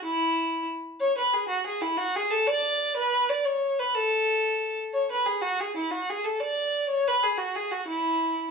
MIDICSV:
0, 0, Header, 1, 2, 480
1, 0, Start_track
1, 0, Tempo, 327511
1, 16, Time_signature, 6, 3, 24, 8
1, 12469, End_track
2, 0, Start_track
2, 0, Title_t, "Fiddle"
2, 0, Program_c, 0, 110
2, 58, Note_on_c, 0, 64, 74
2, 963, Note_off_c, 0, 64, 0
2, 1472, Note_on_c, 0, 73, 102
2, 1711, Note_off_c, 0, 73, 0
2, 1724, Note_on_c, 0, 71, 79
2, 1956, Note_on_c, 0, 68, 77
2, 1978, Note_off_c, 0, 71, 0
2, 2163, Note_off_c, 0, 68, 0
2, 2172, Note_on_c, 0, 66, 86
2, 2420, Note_off_c, 0, 66, 0
2, 2438, Note_on_c, 0, 68, 86
2, 2662, Note_on_c, 0, 64, 84
2, 2684, Note_off_c, 0, 68, 0
2, 2887, Note_on_c, 0, 66, 99
2, 2909, Note_off_c, 0, 64, 0
2, 3163, Note_on_c, 0, 68, 92
2, 3185, Note_off_c, 0, 66, 0
2, 3383, Note_on_c, 0, 69, 90
2, 3405, Note_off_c, 0, 68, 0
2, 3624, Note_on_c, 0, 74, 97
2, 3646, Note_off_c, 0, 69, 0
2, 4336, Note_off_c, 0, 74, 0
2, 4345, Note_on_c, 0, 71, 94
2, 4829, Note_on_c, 0, 74, 85
2, 4851, Note_off_c, 0, 71, 0
2, 5057, Note_on_c, 0, 73, 89
2, 5079, Note_off_c, 0, 74, 0
2, 5555, Note_on_c, 0, 71, 84
2, 5577, Note_off_c, 0, 73, 0
2, 5782, Note_on_c, 0, 69, 95
2, 5804, Note_off_c, 0, 71, 0
2, 6992, Note_off_c, 0, 69, 0
2, 7231, Note_on_c, 0, 73, 86
2, 7471, Note_off_c, 0, 73, 0
2, 7497, Note_on_c, 0, 71, 88
2, 7707, Note_on_c, 0, 68, 81
2, 7729, Note_off_c, 0, 71, 0
2, 7940, Note_on_c, 0, 66, 97
2, 7962, Note_off_c, 0, 68, 0
2, 8210, Note_on_c, 0, 68, 83
2, 8232, Note_off_c, 0, 66, 0
2, 8433, Note_off_c, 0, 68, 0
2, 8445, Note_on_c, 0, 64, 71
2, 8659, Note_on_c, 0, 66, 84
2, 8681, Note_off_c, 0, 64, 0
2, 8936, Note_on_c, 0, 68, 81
2, 8958, Note_off_c, 0, 66, 0
2, 9149, Note_on_c, 0, 69, 77
2, 9171, Note_off_c, 0, 68, 0
2, 9378, Note_on_c, 0, 74, 90
2, 9400, Note_off_c, 0, 69, 0
2, 10086, Note_off_c, 0, 74, 0
2, 10094, Note_on_c, 0, 73, 101
2, 10375, Note_on_c, 0, 71, 92
2, 10397, Note_off_c, 0, 73, 0
2, 10599, Note_on_c, 0, 68, 81
2, 10621, Note_off_c, 0, 71, 0
2, 10815, Note_on_c, 0, 66, 80
2, 10837, Note_off_c, 0, 68, 0
2, 11077, Note_on_c, 0, 68, 80
2, 11099, Note_off_c, 0, 66, 0
2, 11302, Note_on_c, 0, 66, 70
2, 11324, Note_off_c, 0, 68, 0
2, 11528, Note_off_c, 0, 66, 0
2, 11537, Note_on_c, 0, 64, 84
2, 12462, Note_off_c, 0, 64, 0
2, 12469, End_track
0, 0, End_of_file